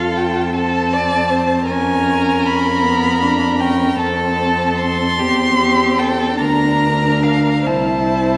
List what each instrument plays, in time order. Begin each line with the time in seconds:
Already playing: cello F2, viola F4, violin A4 F5
0.17 violin G5
0.53 viola C4, violin A4 A5
0.93 violin D5
1.30 violin C5
1.66 violin A#4 G#5
1.71 viola C#4
2.45 violin B5
2.84 viola B3
3.23 viola D4
3.60 viola C#4, violin G5
3.99 cello F2, viola C4, violin A4 A5
4.78 violin C6
5.19 cello E2, viola C4, violin G4
5.59 violin G4
5.99 violin A4 G5
6.39 cello D2, viola D4, violin A#4 A#5
7.23 violin F5
7.66 cello C2, viola E4, violin C5 A5